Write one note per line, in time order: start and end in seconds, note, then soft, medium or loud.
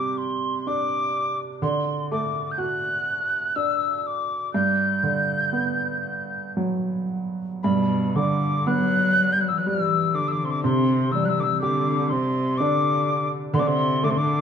0.00 1.58 C3 medium
0.00 1.10 G3 soft
0.00 1.58 G4 soft
0.00 0.18 D6 medium
0.17 0.69 C6 medium
0.67 1.59 D4 soft
0.67 1.38 D6 medium
1.62 4.48 D3 medium
1.62 2.06 C6 medium
2.11 4.00 A3 soft
2.11 2.52 D6 medium
2.51 2.59 G6 medium
2.58 4.48 F#4 soft
2.58 3.57 F#6 medium
3.55 4.50 D4 soft
3.55 3.98 E6 medium
3.98 4.08 E6 soft
4.06 4.52 D6 medium
4.53 7.59 G2 medium
4.53 6.51 G6 medium
5.03 7.05 D3 soft
5.53 7.59 B3 soft
6.57 7.60 F#3 soft
7.63 10.60 G2 medium
7.63 8.17 B2 medium
7.63 8.17 B5 medium
8.15 10.10 D3 soft
8.15 8.68 D3 medium
8.15 8.68 D6 medium
8.67 9.34 F#3 medium
8.67 10.59 B3 soft
8.67 9.34 F#6 medium
9.32 9.42 G3 medium
9.32 9.42 G6 medium
9.40 9.52 F#3 medium
9.40 9.49 F#6 medium
9.48 9.60 E3 medium
9.48 9.59 E6 medium
9.57 9.69 F#3 medium
9.57 9.69 F#6 medium
9.66 10.15 E3 medium
9.66 10.61 G3 medium
9.66 10.16 E6 medium
10.14 10.30 D3 medium
10.14 10.29 D6 medium
10.28 10.34 E3 soft
10.28 10.46 D6 medium
10.28 10.33 E6 soft
10.32 10.45 D3 medium
10.43 10.48 C3 soft
10.43 10.63 D3 medium
10.43 10.52 C6 medium
10.50 10.62 D6 medium
10.63 13.50 C3 medium
10.63 11.13 C3 medium
10.63 11.13 C6 medium
11.11 11.27 E3 medium
11.11 13.03 G3 soft
11.11 11.26 E6 medium
11.25 11.31 F#3 soft
11.25 11.41 E6 medium
11.25 11.30 F#6 medium
11.29 11.42 E3 medium
11.40 11.47 D3 soft
11.40 11.44 D6 medium
11.40 11.59 E6 medium
11.46 11.61 E3 medium
11.61 12.13 D3 medium
11.61 13.50 G4 soft
11.61 12.10 D6 medium
12.09 12.62 C3 medium
12.09 12.59 C6 medium
12.57 13.31 D3 medium
12.57 13.52 D4 medium
12.57 13.29 D6 medium
13.53 14.41 D3 medium
13.53 13.61 C6 medium
13.58 13.63 C3 medium
13.58 13.69 D3 medium
13.58 13.69 D6 medium
13.67 14.05 C3 medium
13.67 14.05 C6 medium
14.03 14.11 D3 medium
14.03 14.41 A3 medium
14.03 14.11 D6 medium
14.09 14.17 C3 medium
14.09 14.19 C6 medium
14.16 14.41 D3 medium
14.16 14.41 D6 medium